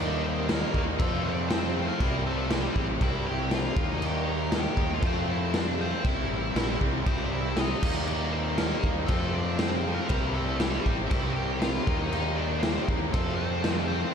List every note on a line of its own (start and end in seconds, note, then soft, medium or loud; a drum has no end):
0.00 0.63 D#2 medium
0.00 0.25 D#3 medium
0.00 0.47 D#3 loud
0.00 0.24 G3 medium
0.00 0.48 G3 medium
0.00 0.48 A#3 loud
0.00 0.24 A#3 medium
0.00 0.21 D4 medium
0.00 0.49 D#4 loud
0.00 0.23 D#4 medium
0.00 0.24 D5 medium
0.24 0.47 D#3 medium
0.24 0.48 G3 medium
0.24 0.49 A#3 medium
0.24 0.48 C4 medium
0.24 0.50 D#4 loud
0.24 0.48 C5 medium
0.49 0.98 D#3 medium
0.49 0.76 G3 medium
0.49 0.85 A#3 medium
0.49 0.74 A#3 medium
0.49 0.73 D#4 medium
0.49 0.85 A#4 medium
0.49 snare loud
0.49 crash medium
0.74 0.97 D#2 loud
0.74 1.00 G3 medium
0.74 0.99 A#3 medium
0.74 0.98 D#4 medium
0.74 kick medium
0.99 1.89 F2 loud
0.99 1.48 F3 loud
0.99 1.23 A3 medium
0.99 1.26 A3 medium
0.99 1.25 C4 loud
0.99 1.23 F4 loud
0.99 1.25 A4 medium
0.99 kick loud
0.99 crash medium
1.23 1.51 C4 medium
1.23 1.47 D4 medium
1.23 1.51 F4 medium
1.23 1.49 D5 medium
1.28 1.50 A3 medium
1.49 1.99 F3 medium
1.49 1.77 A3 medium
1.49 1.85 C4 medium
1.49 1.76 C4 loud
1.49 1.75 F4 medium
1.49 1.89 C5 medium
1.49 snare loud
1.49 crash medium
1.76 1.99 F3 medium
1.76 2.01 A3 medium
1.76 2.00 C4 medium
1.76 1.99 F4 medium
1.88 2.23 A#3 medium
1.88 2.23 A#4 medium
2.00 2.67 C2 loud
2.00 2.27 C3 medium
2.00 2.27 G3 medium
2.00 2.25 C4 loud
2.00 2.25 E4 loud
2.00 kick loud
2.00 crash medium
2.26 2.51 C3 medium
2.26 2.52 G3 medium
2.26 2.50 A3 medium
2.26 2.52 C4 medium
2.26 2.53 E4 medium
2.26 2.50 A4 medium
2.50 3.00 C3 medium
2.50 2.87 G3 medium
2.50 2.77 G3 medium
2.50 2.77 C4 medium
2.50 2.75 E4 medium
2.50 2.86 G4 medium
2.50 snare loud
2.50 crash medium
2.76 2.98 A1 loud
2.76 2.98 C3 medium
2.76 3.01 G3 medium
2.76 3.01 C4 medium
2.76 3.00 E4 medium
2.76 kick medium
3.01 3.68 C2 loud
3.01 3.50 C3 loud
3.01 3.28 G3 medium
3.01 3.27 C4 loud
3.01 3.25 E4 loud
3.01 3.26 E4 medium
3.01 3.26 E5 loud
3.01 kick loud
3.01 crash medium
3.26 3.51 G3 medium
3.26 3.51 C4 medium
3.26 3.52 E4 medium
3.26 3.51 G4 medium
3.26 3.50 G5 medium
3.51 3.75 C3 medium
3.51 3.76 G3 medium
3.51 3.76 C4 loud
3.51 3.76 E4 loud
3.51 3.88 F5 loud
3.51 snare loud
3.51 crash medium
3.55 3.89 F4 medium
3.76 4.66 D#2 loud
3.76 4.01 D#3 medium
3.76 4.02 G3 medium
3.76 4.03 A#3 medium
3.76 4.03 D#4 medium
3.76 kick loud
3.92 4.03 D#4 medium
3.92 4.04 D#5 loud
4.02 4.28 D#3 medium
4.02 4.28 G3 medium
4.02 4.27 A#3 medium
4.02 4.26 D#4 medium
4.02 4.30 G5 loud
4.02 crash medium
4.06 4.28 G4 medium
4.27 4.51 D#3 medium
4.27 4.52 G3 medium
4.27 4.53 A#3 medium
4.27 4.54 D#4 loud
4.27 4.55 A#5 loud
4.32 4.53 A#4 medium
4.52 5.02 D#3 medium
4.52 4.79 G3 medium
4.52 4.77 A#3 medium
4.52 4.77 D#4 medium
4.52 4.90 G4 medium
4.52 snare loud
4.52 crash medium
4.56 4.94 G5 medium
4.77 5.00 D#2 medium
4.77 5.03 G3 medium
4.77 5.02 A#3 medium
4.77 5.02 D#4 medium
4.77 kick medium
4.94 5.04 F4 medium
4.94 5.05 F5 medium
5.02 5.92 F2 loud
5.02 5.51 F3 medium
5.02 5.29 A3 loud
5.02 5.28 C4 loud
5.02 5.27 F4 loud
5.02 kick loud
5.02 crash medium
5.07 5.30 C4 medium
5.07 5.31 C5 loud
5.28 5.53 A3 medium
5.28 5.53 C4 medium
5.28 5.54 E4 medium
5.28 5.54 F4 medium
5.32 5.56 E5 medium
5.52 6.02 F3 medium
5.52 5.79 A3 loud
5.52 5.78 C4 medium
5.52 5.76 F4 loud
5.52 snare loud
5.52 crash medium
5.56 5.79 D4 medium
5.56 5.81 D5 loud
5.78 6.03 F3 medium
5.78 6.04 A3 medium
5.78 6.03 C4 medium
5.78 6.02 F4 medium
5.78 6.06 C5 medium
5.83 6.05 C4 medium
6.03 6.27 C2 loud
6.03 6.30 C3 medium
6.03 6.29 G3 loud
6.03 6.28 C4 medium
6.03 6.27 E4 loud
6.03 6.78 E5 loud
6.03 kick loud
6.03 crash medium
6.09 6.79 E4 medium
6.29 6.53 A1 medium
6.29 6.54 C3 medium
6.29 6.55 G3 medium
6.29 6.56 C4 medium
6.29 6.56 E4 medium
6.55 6.78 A#1 medium
6.55 7.05 C3 medium
6.55 6.81 G3 medium
6.55 6.80 C4 medium
6.55 6.78 E4 medium
6.55 snare loud
6.55 crash medium
6.80 7.04 C2 medium
6.80 7.03 C3 medium
6.80 7.06 G3 medium
6.80 7.05 C4 medium
6.80 7.04 E4 medium
6.80 kick medium
7.06 7.73 C2 medium
7.06 7.57 C3 medium
7.06 7.34 G3 loud
7.06 7.33 C4 loud
7.06 7.31 C4 medium
7.06 7.32 E4 loud
7.06 7.33 C5 loud
7.06 kick loud
7.06 crash medium
7.32 7.58 G3 medium
7.32 7.59 C4 medium
7.32 7.60 E4 medium
7.32 7.56 E4 medium
7.32 7.55 E5 medium
7.57 7.81 C3 medium
7.57 7.82 G3 loud
7.57 7.83 C4 loud
7.57 7.94 D#4 medium
7.57 7.95 D#5 medium
7.57 snare loud
7.57 crash medium
7.61 7.83 E4 medium
7.81 8.72 D#2 loud
7.81 8.56 D#3 medium
7.81 8.10 A#3 medium
7.81 8.10 D#4 medium
7.81 kick loud
7.81 crash loud
7.85 8.08 D#3 medium
7.85 8.09 G3 medium
7.96 8.31 D4 medium
7.96 8.32 D5 medium
8.07 8.36 D#3 medium
8.07 8.34 G3 medium
8.07 crash medium
8.11 8.33 A#3 medium
8.11 8.33 D#4 medium
8.33 8.59 D#3 medium
8.33 8.61 G3 medium
8.33 8.61 A#3 medium
8.33 8.57 C4 medium
8.33 8.61 D#4 loud
8.33 8.59 C5 medium
8.57 9.08 D#3 medium
8.57 8.83 G3 medium
8.57 8.82 A#3 medium
8.57 8.94 A#3 medium
8.57 8.93 A#4 medium
8.57 snare loud
8.57 crash medium
8.62 8.86 G3 medium
8.62 8.85 A#3 medium
8.62 8.84 D#4 medium
8.83 9.06 D#2 medium
8.83 9.09 A#3 medium
8.83 9.08 D#4 medium
8.83 kick medium
8.88 9.09 G3 medium
9.06 9.99 F2 loud
9.06 9.59 F3 medium
9.06 9.33 A3 medium
9.06 9.36 A3 medium
9.06 9.34 C4 loud
9.06 9.33 F4 loud
9.06 9.34 A4 loud
9.06 kick loud
9.06 crash medium
9.34 9.60 A3 medium
9.34 9.61 C4 medium
9.34 9.60 D4 medium
9.34 9.61 F4 medium
9.34 9.59 D5 medium
9.59 10.08 F3 medium
9.59 9.86 A3 loud
9.59 9.95 C4 medium
9.59 9.84 C4 loud
9.59 9.98 C5 loud
9.59 snare loud
9.59 crash medium
9.63 9.83 F4 medium
9.84 10.10 F3 medium
9.84 10.09 A3 medium
9.84 10.09 C4 medium
9.84 10.08 F4 medium
9.95 10.34 A#4 loud
9.99 10.34 A#3 medium
10.09 10.77 C2 loud
10.09 10.36 C3 medium
10.09 10.36 G3 medium
10.09 10.35 C4 loud
10.09 10.34 E4 medium
10.09 kick loud
10.09 crash medium
10.35 10.59 C3 medium
10.35 10.60 G3 medium
10.35 10.60 A3 medium
10.35 10.61 C4 medium
10.35 10.62 E4 loud
10.35 10.59 A4 medium
10.60 11.10 C3 medium
10.60 10.89 G3 medium
10.60 10.97 G3 medium
10.60 10.87 C4 medium
10.60 10.86 E4 medium
10.60 10.96 G4 medium
10.60 snare loud
10.60 crash medium
10.86 11.08 A1 loud
10.86 11.09 C3 medium
10.86 11.11 C4 medium
10.86 11.10 E4 medium
10.86 kick medium
10.90 11.12 G3 medium
11.07 11.78 C2 loud
11.07 11.59 G3 loud
11.07 11.34 E4 medium
11.07 11.32 E5 loud
11.07 crash medium
11.11 11.60 C3 medium
11.11 11.38 G3 loud
11.11 11.38 C4 loud
11.11 11.36 E4 loud
11.11 kick loud
11.33 11.60 G4 medium
11.33 11.58 G5 loud
11.37 11.62 G3 medium
11.37 11.62 C4 medium
11.37 11.63 E4 medium
11.60 11.86 C3 loud
11.60 11.86 G3 loud
11.60 11.86 C4 loud
11.60 11.99 F4 medium
11.60 11.96 F5 loud
11.60 snare loud
11.60 crash medium
11.65 11.87 E4 loud
11.86 12.77 D#2 loud
11.86 12.61 D#3 loud
11.86 12.12 G3 medium
11.86 12.13 A#3 medium
11.86 12.14 D#4 medium
11.86 kick loud
11.90 12.11 D#3 medium
11.99 12.37 D#4 medium
11.99 12.35 D#5 loud
12.12 12.39 D#3 medium
12.12 12.37 G3 medium
12.12 12.37 A#3 medium
12.12 12.36 D#4 medium
12.12 crash medium
12.37 12.62 D#3 medium
12.37 12.63 G3 medium
12.37 12.64 A#3 loud
12.37 12.62 D4 medium
12.37 12.65 D#4 loud
12.37 12.59 D5 loud
12.60 13.12 D#3 medium
12.60 12.99 C4 medium
12.60 12.97 C5 medium
12.60 snare loud
12.60 crash medium
12.64 12.88 G3 medium
12.64 12.88 A#3 medium
12.64 12.86 D#4 medium
12.87 13.11 D#2 loud
12.87 13.13 G3 medium
12.87 13.13 A#3 medium
12.87 13.12 D#4 medium
12.87 kick medium
13.13 14.03 F2 loud
13.13 13.62 F3 medium
13.13 13.39 A3 medium
13.13 13.37 A3 medium
13.13 13.39 C4 loud
13.13 13.37 F4 loud
13.13 13.35 A4 loud
13.13 kick loud
13.13 crash medium
13.35 13.85 C4 medium
13.35 13.65 F4 medium
13.35 13.87 C5 medium
13.40 13.63 A3 medium
13.40 13.64 C4 medium
13.63 14.13 F3 medium
13.63 13.90 A3 medium
13.63 13.90 C4 loud
13.63 13.88 F4 loud
13.63 snare loud
13.63 crash medium
13.88 14.14 A3 medium
13.88 14.14 C4 medium
13.88 14.13 F4 medium
13.88 14.14 C5 medium
13.92 14.14 F3 medium